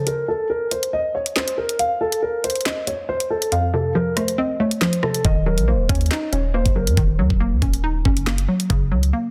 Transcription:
0.07 grand piano A#4, closed hi-hat
0.28 grand piano A4
0.50 grand piano A#4
0.71 grand piano C5, closed hi-hat
0.83 closed hi-hat
0.93 grand piano D#5
1.15 grand piano C#5
1.26 closed hi-hat
1.36 grand piano C5, snare, clap, closed hi-hat
1.48 closed hi-hat
1.58 grand piano A#4
1.69 closed hi-hat
1.79 grand piano F5, closed hi-hat
2.01 grand piano A4
2.12 closed hi-hat
2.22 grand piano A#4
2.44 grand piano C5, closed hi-hat
2.50 closed hi-hat
2.56 closed hi-hat
2.61 closed hi-hat
2.66 grand piano D#5, snare, clap, closed hi-hat
2.87 grand piano C#5, closed hi-hat
3.09 grand piano C5
3.20 closed hi-hat
3.30 grand piano A4
3.42 closed hi-hat
3.52 synth pluck F2, grand piano F5, closed hi-hat
3.73 synth pluck C3, grand piano A4
3.95 synth pluck F3, grand piano A#4
4.17 synth pluck A3, grand piano C5, cross-stick, closed hi-hat
4.28 closed hi-hat
4.38 synth pluck C4, grand piano D#5
4.60 synth pluck A3, grand piano C#5
4.71 closed hi-hat
4.81 synth pluck F3, grand piano C5, snare, clap, closed hi-hat
4.93 closed hi-hat
5.03 synth pluck C3, grand piano A4, cross-stick
5.14 closed hi-hat
5.25 808-style bass D#1, synth pluck D#3, grand piano D#5, kick, closed hi-hat
5.46 synth pluck F#3, grand piano A#4
5.58 808-style bass A#1, closed hi-hat
5.68 synth pluck A#3, grand piano C5
5.74 808-style bass D#1
5.89 808-style bass D#2, synth pluck C#4, grand piano C#5, kick, closed hi-hat
5.95 closed hi-hat
6.01 closed hi-hat
6.06 closed hi-hat
6.11 synth pluck D#4, grand piano D#5, snare, clap, closed hi-hat
6.32 808-style bass D#1, synth pluck C#4, grand piano C#5, closed hi-hat
6.54 synth pluck A#3, grand piano C5
6.66 808-style bass F#1, kick, closed hi-hat
6.76 synth pluck F#3, grand piano A#4
6.87 808-style bass F#2, closed hi-hat
6.97 808-style bass D#1, synth pluck D#3, kick, closed hi-hat
7.19 808-style bass D#2, synth pluck F#3
7.30 808-style bass D#1, kick
7.40 synth pluck A#3
7.52 808-style bass D#2
7.62 808-style bass D#1, synth pluck C#4, kick, closed hi-hat
7.74 closed hi-hat
7.84 synth pluck D#4
8.05 808-style bass F#1, synth pluck C#4, kick
8.17 closed hi-hat
8.27 synth pluck A#3, snare, clap, closed hi-hat
8.38 closed hi-hat
8.48 synth pluck F#3
8.60 closed hi-hat
8.70 808-style bass F#1, synth pluck C#3, kick, closed hi-hat
8.92 808-style bass C#2, synth pluck F#3
9.03 closed hi-hat
9.13 synth pluck A#3

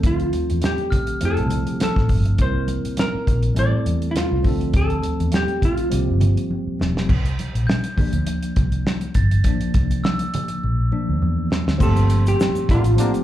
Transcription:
Already playing: tine electric piano F3 A3 C4 D4 A4
0.03 fingered electric bass D2, hollow-body jazz guitar F4, kick, closed hi-hat, muted conga
0.20 closed hi-hat
0.33 closed hi-hat, muted conga
0.50 fingered electric bass E2, closed hi-hat
0.62 hollow-body jazz guitar G4, snare, closed hi-hat, high conga
0.78 closed hi-hat
0.91 glockenspiel F6, kick, closed hi-hat, low conga
1.07 closed hi-hat
1.21 fingered electric bass F2, tine electric piano F3 A3 C4 E4 G#4, closed hi-hat, muted conga
1.25 hollow-body jazz guitar A4
1.31 tine electric piano A4
1.37 fingered electric bass C2, closed hi-hat
1.50 closed hi-hat, muted conga, low conga
1.67 hollow-body jazz guitar G4, closed hi-hat
1.80 hollow-body jazz guitar A4, snare, closed hi-hat, high conga
1.96 fingered electric bass A1, kick, snare
2.08 fingered electric bass G1, kick, open hi-hat, high conga
2.25 closed hi-hat
2.38 fingered electric bass C2, tine electric piano G3 A#3 C4 E4 A#4, hollow-body jazz guitar C5, kick, closed hi-hat, muted conga
2.68 closed hi-hat, muted conga
2.85 muted fingered electric bass stroke, closed hi-hat
2.97 hollow-body jazz guitar A#4, snare, closed hi-hat, high conga
3.15 muted fingered electric bass stroke
3.27 fingered electric bass A#1, kick, closed hi-hat, low conga
3.43 closed hi-hat
3.55 fingered electric bass A1, tine electric piano G3 A3 C4 E4 A4, closed hi-hat, muted conga
3.59 hollow-body jazz guitar D5
3.73 muted fingered electric bass stroke
3.86 fingered electric bass E2, closed hi-hat, muted conga
4.02 closed hi-hat
4.11 hollow-body jazz guitar E4
4.15 hollow-body jazz guitar F4, snare, closed hi-hat, high conga
4.31 fingered electric bass C2
4.43 fingered electric bass D2, tine electric piano F3 A3 C4 D4, kick, open hi-hat, high conga
4.47 tine electric piano A4
4.61 closed hi-hat
4.73 fingered electric bass D2, hollow-body jazz guitar A4, kick, closed hi-hat
4.90 closed hi-hat
5.02 closed hi-hat, muted conga
5.20 fingered electric bass E2, closed hi-hat
5.32 hollow-body jazz guitar G4, snare, closed hi-hat, high conga
5.48 closed hi-hat
5.62 hollow-body jazz guitar F4, kick, closed hi-hat, low conga
5.77 closed hi-hat
5.90 fingered electric bass C2, tine electric piano F3 G3 A#3 C4 G4, closed hi-hat, muted conga
6.09 fingered electric bass G1
6.21 closed hi-hat, muted conga, low conga
6.37 closed hi-hat
6.51 high conga
6.67 muted fingered electric bass stroke
6.79 fingered electric bass E1, snare, high conga
6.97 snare
7.09 fingered electric bass C2, kick, crash, muted conga
7.26 closed hi-hat
7.39 closed hi-hat, muted conga
7.55 fingered electric bass A#1, closed hi-hat
7.67 glockenspiel G6, snare, high conga
7.84 closed hi-hat
7.97 tine electric piano F3 A#3 D4, muted fingered electric bass stroke, kick, open hi-hat, low conga
8.13 fingered electric bass D2, closed hi-hat
8.27 closed hi-hat, muted conga
8.43 closed hi-hat
8.56 fingered electric bass C2, kick, closed hi-hat, muted conga, low conga
8.72 closed hi-hat
8.86 snare, high conga
9.01 closed hi-hat
9.14 fingered electric bass G1, glockenspiel A6, kick, closed hi-hat, high conga
9.31 closed hi-hat
9.44 tine electric piano F3 A#3 D4, kick, closed hi-hat, muted conga
9.61 closed hi-hat
9.74 fingered electric bass C2, kick, closed hi-hat, muted conga
9.91 closed hi-hat
10.04 glockenspiel E6, snare, high conga
10.19 closed hi-hat
10.34 closed hi-hat, low conga
10.48 closed hi-hat
10.63 fingered electric bass A#1, muted conga
10.92 tine electric piano F3 A#3 D4, muted conga
11.09 fingered electric bass D2
11.22 fingered electric bass E2, high conga
11.50 snare, high conga
11.67 fingered electric bass D2, snare
11.78 fingered electric bass G1, tine electric piano F3 A3 A#3 C4 G4, glockenspiel C6, kick, crash, shaker
11.83 hollow-body jazz guitar A4
11.96 closed hi-hat, shaker
12.10 closed hi-hat, muted conga, shaker
12.26 hollow-body jazz guitar G4, closed hi-hat, shaker
12.40 snare, high conga, shaker
12.55 muted fingered electric bass stroke, closed hi-hat, shaker
12.69 fingered electric bass A1, trombone section D3 A#3 D4, hollow-body jazz guitar F4, kick, closed hi-hat, low conga
12.84 closed hi-hat, shaker
12.96 trombone section D3 A#3 D4, tine electric piano F3 A3 A#3 C4 G4, closed hi-hat, muted conga, shaker
13.14 closed hi-hat, shaker

